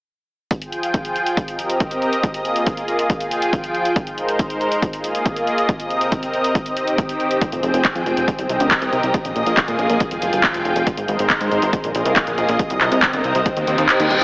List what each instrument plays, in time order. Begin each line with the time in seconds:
0.51 analog synth pad F3 F4 G#4 G5, kick, closed hi-hat
0.62 closed hi-hat
0.72 closed hi-hat
0.83 closed hi-hat
0.94 kick, closed hi-hat
1.05 closed hi-hat
1.16 closed hi-hat
1.26 closed hi-hat
1.37 analog synth pad C4 G4 A#4 D#5, kick, closed hi-hat
1.48 closed hi-hat
1.59 closed hi-hat
1.70 closed hi-hat
1.80 kick, closed hi-hat
1.91 closed hi-hat
2.02 closed hi-hat
2.13 closed hi-hat
2.23 analog synth pad A#3 F4 G#4, kick, closed hi-hat
2.34 closed hi-hat
2.45 closed hi-hat
2.56 closed hi-hat
2.66 kick, closed hi-hat
2.77 closed hi-hat
2.88 closed hi-hat
2.99 closed hi-hat
3.10 analog synth pad F3 F4 G#4 G5, kick, closed hi-hat
3.20 closed hi-hat
3.31 closed hi-hat
3.42 closed hi-hat
3.53 kick, closed hi-hat
3.64 closed hi-hat
3.75 closed hi-hat
3.85 closed hi-hat
3.96 analog synth pad G#3 D#4 A#4 C5, kick, closed hi-hat
4.07 closed hi-hat
4.18 closed hi-hat
4.29 closed hi-hat
4.39 kick, closed hi-hat
4.50 closed hi-hat
4.61 closed hi-hat
4.72 closed hi-hat
4.82 analog synth pad A#3 F4 G#4 D#5, kick, closed hi-hat
4.93 closed hi-hat
5.04 closed hi-hat
5.15 closed hi-hat
5.26 kick, closed hi-hat
5.36 closed hi-hat
5.47 closed hi-hat
5.58 closed hi-hat
5.69 analog synth pad C3 C4 A#4, kick, closed hi-hat
5.80 closed hi-hat
5.90 closed hi-hat
6.01 closed hi-hat
6.12 kick, closed hi-hat
6.23 closed hi-hat
6.33 closed hi-hat
6.44 closed hi-hat
6.55 analog synth pad D#3 C4 G4, kick, closed hi-hat
6.66 closed hi-hat
6.77 closed hi-hat
6.87 closed hi-hat
6.98 kick, closed hi-hat
7.09 closed hi-hat
7.20 closed hi-hat
7.31 closed hi-hat
7.41 analog synth pad F3 G#4 G5, kick, closed hi-hat
7.52 analog synth bass F1, closed hi-hat
7.63 analog synth bass F1, closed hi-hat
7.74 analog synth bass F1, closed hi-hat
7.85 kick, clap, closed hi-hat
7.95 analog synth bass F2, closed hi-hat
8.06 analog synth bass F1, closed hi-hat
8.17 analog synth bass F1, closed hi-hat
8.28 analog synth pad G4 A#4 D#5, kick, closed hi-hat
8.39 analog synth bass C2, closed hi-hat
8.49 analog synth bass C2, closed hi-hat
8.60 analog synth bass D2, closed hi-hat
8.71 kick, clap, closed hi-hat
8.82 analog synth bass C2, closed hi-hat
8.92 analog synth bass C2, closed hi-hat
9.03 analog synth bass C2, closed hi-hat
9.14 analog synth pad A#3 F4 G#4 D#5, kick, closed hi-hat
9.25 analog synth bass A#1, closed hi-hat
9.36 analog synth bass A#1, closed hi-hat
9.46 analog synth bass A#1, closed hi-hat
9.57 kick, clap, closed hi-hat
9.68 analog synth bass A#2, closed hi-hat
9.79 analog synth bass A#1, closed hi-hat
9.90 analog synth bass A#1, closed hi-hat
10.00 analog synth pad F3 F4 G5, kick, closed hi-hat
10.11 analog synth bass F1, closed hi-hat
10.22 analog synth bass F1, closed hi-hat
10.33 analog synth bass G1, closed hi-hat
10.44 kick, clap, closed hi-hat
10.54 analog synth bass F1, closed hi-hat
10.65 analog synth bass F1, closed hi-hat
10.76 analog synth bass F1, closed hi-hat
10.87 analog synth pad G#3 D#4 A#4 C5, kick, closed hi-hat
10.97 analog synth bass G#1, closed hi-hat
11.08 analog synth bass G#1, closed hi-hat
11.19 analog synth bass G#1, closed hi-hat
11.30 kick, clap, closed hi-hat
11.41 analog synth bass G#2, closed hi-hat
11.52 analog synth bass G#1, closed hi-hat
11.62 analog synth bass G#1, closed hi-hat
11.73 analog synth pad A#3 F4 G#4 D#5, kick, closed hi-hat
11.84 analog synth bass A#1, closed hi-hat
11.95 analog synth bass A#1, closed hi-hat
12.05 analog synth bass C2, closed hi-hat
12.16 kick, clap, closed hi-hat
12.27 analog synth bass A#1, closed hi-hat
12.38 analog synth bass A#1, closed hi-hat
12.49 analog synth bass A#1, closed hi-hat
12.59 analog synth pad C3 C4 A#4, kick, closed hi-hat
12.70 analog synth bass C2, closed hi-hat
12.81 analog synth bass C2, clap, closed hi-hat
12.92 analog synth bass C2, closed hi-hat
13.02 kick, clap, closed hi-hat
13.13 analog synth bass G1, closed hi-hat
13.24 analog synth bass C2, closed hi-hat
13.35 analog synth bass C2, closed hi-hat
13.46 analog synth pad D#3 G4, kick, closed hi-hat, reverse cymbal
13.57 analog synth bass D#2, closed hi-hat
13.67 analog synth bass D#2, closed hi-hat
13.78 analog synth bass D#2, closed hi-hat
13.89 clap, closed hi-hat
14.00 analog synth bass D#2, closed hi-hat
14.11 analog synth bass D#1, closed hi-hat